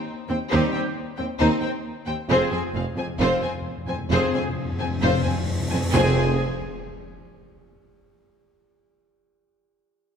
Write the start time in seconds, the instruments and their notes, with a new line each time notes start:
0.28 cello section D#2, viola section C4, violin section C5 G5
0.50 tuba D#2, cello section D#2, double bass section D#2, french horn section G3 C4, viola section C4, violin section D#4 C5, trumpet section G4
0.72 cello section D#2, viola section C4, violin section C5 G5
1.16 cello section D#2, viola section C4, violin section C5 G5
1.39 tuba D#2, double bass section D#2, cello section D#2, viola section C4, violin section D#4 C5
1.61 cello section D#2, viola section C4, violin section C5 G5
2.05 cello section D#2, viola section C4, violin section C5 G5
2.28 tuba F1, double bass section F1, timpani F2, cello section F2, french horn section F3 C4, viola section C4, violin section F4 C5, trumpet section G#4, cymbal swell
2.36 timpani F2
2.45 timpani F2
2.51 timpani F2, cello section F2, viola section C4, violin section C5 G#5
2.61 timpani F2
2.69 timpani F2
2.74 double bass section F1, tuba F1, cello section F2, timpani F2, viola section C4, violin section G#4 F5
2.84 timpani F2
2.91 timpani F2
2.97 cello section F2, timpani F2, viola section C4, violin section C5 G#5
3.07 timpani F2
3.15 timpani F2
3.19 double bass section F1, tuba F1, cello section F2, timpani F2, viola section C4, violin section F4 C5
3.30 timpani F2
3.38 timpani F2, viola section C4
3.42 cello section F2, timpani F2, violin section C5 G#5
3.54 timpani F2
3.61 timpani F2
3.70 timpani F2
3.78 timpani F2
3.86 timpani F2, cello section F2, viola section C4, violin section C5 G#5
3.93 timpani F2
4.01 timpani F2
4.09 tuba F1, double bass section F1, timpani F2, cello section F2, french horn section F3 C4, viola section C4, violin section F4 C5, trumpet section G#4
4.18 timpani F2
4.25 timpani F2
4.33 timpani F2, cello section F2, viola section C4, violin section C5 G#5
4.41 timpani F2
4.49 timpani F2
4.57 timpani F2
4.65 timpani F2
4.72 timpani F2
4.79 timpani F2, cello section F2, viola section C4, violin section C5 G#5
4.88 timpani F2
4.96 timpani F2
5.01 double bass section F1, tuba F1, cello section F2, timpani F2, viola section C4, violin section F4 C5
5.12 timpani F2
5.19 timpani F2
5.24 cello section F2, timpani F2, viola section C4, violin section C5 G#5
5.36 timpani F2
5.43 timpani F2
5.51 timpani F2
5.60 timpani F2
5.68 timpani F2, viola section C4, violin section G#5
5.72 cello section F2, timpani F2, violin section C5
5.83 timpani F2
5.93 double bass section F1, tuba F1, timpani F2, cello section F2, french horn section F3 C4, viola section C4, trumpet section G#4, violin section C5 G#5, impact